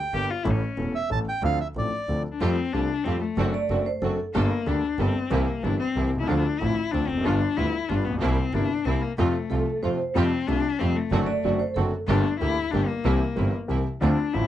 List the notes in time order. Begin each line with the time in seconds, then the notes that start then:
Already playing: G5
0.13 G1 G2 D3 G3 A#3 G4
0.31 F4
0.43 A1 A2 E3 A3 C#4 E4 A4
0.52 C#4
0.77 E1 E2 E3 A3 C#4 A4
0.95 E5
1.10 A1 A2 E3 A3 C#4 A4 A5
1.29 G5
1.42 D2 D3 F3 C4 D4 A4 F5
1.61 E5
1.75 A1 A2 F3 C4 D4 A4 D5
2.08 D2 D3 F3 C4 D4 A4
2.32 D4
2.41 F2 F3 G3 A3 C4 F4 G4 A4
2.73 C2 C3 G3 A3 C4 D4 F4 G4 A4
3.04 F2 F3 G3 A3 C4 F4 G4 A4
3.21 A3
3.37 F#1 F#2 F#3 C4 D4 F#4 A4
3.54 D5
3.70 F#1 F#2 F#3 C4 D4 F#4 A4
3.86 C5
4.02 F#1 F#2 F#3 C4 D4 F#4 A4
4.34 G1 G2 G3 A#3 D4 G4 A4
4.66 D2 D3 G3 A#3 D4 G4 A4
4.99 G1 G2 G3 A#3 C4 D4 G4 A4
5.30 C2 C3 E3 A#3 C4 E4 G4
5.63 G1 G2 E3 A#3 C4 D4 E4 G4
5.79 C4
5.96 C2 C3 E3 A#3 C4 E4 G4
6.13 B1 C2
6.20 C2 C#2 E4
6.27 D2 D3 F3 A3 C4 D4 F4
6.59 A1 A2 D3 F3 A3 C4 D4 E4 F4
6.92 D2 D3 F3 A3 C4 D4 F4
7.08 F1 C4
7.14 E2 F2
7.21 G1 F#2 D3 G3 B3 F4
7.25 G1 G2 B3 D4 F4
7.57 D2 D3 G3 B3 E4 F4
7.89 G1 G2 D3 G3 B3 D4 F4
8.05 A#1 B3
8.10 A1
8.15 A#1 B1
8.20 C2 C3 G3 A#3 C4 E4
8.54 G1 G2 C3 G3 A#3 C4 D4 E4
8.85 C2 C3 G3 A#3 C4 E4
9.02 A#3
9.18 F2 C3 F3 A3 C4 F4
9.50 C2 C3 F3 A3 C4 F4 A4
9.82 F2 C3 F3 A3 C4 F4 C5
10.15 F2 C3 F3 G3 A3 C4 F4 G4
10.47 C2 C3 G3 A3 D4 F4 G4
10.79 F2 C3 F3 G3 A3 C4 F4 G4
10.96 A3
11.12 F#1 F#2 D3 F#3 A3 C4 D4 F#4
11.26 D5
11.44 F#1 F#2 D3 F#3 A3 C4 D4 F#4
11.59 C5
11.75 F#1 F#2 D3 F#3 A3 C4 D4 F#4 A4
12.08 G1 G2 D3 A3 A#3 D4 G4
12.39 D2 D3 A3 A#3 E4 G4
12.71 G1 G2 D3 A3 A#3 D4 G4
12.88 A#3
13.04 C2 C3 E3 A#3 C4 E4 G4
13.36 G1 G2 E3 A#3 C4 E4 G4
13.68 C2 C3 E3 A#3 C4 E4 G4
14.01 D2 D3 F3 A3 C4 D4 F4
14.34 A1 A2 D3 F3 A3 C4 D4 E4 F4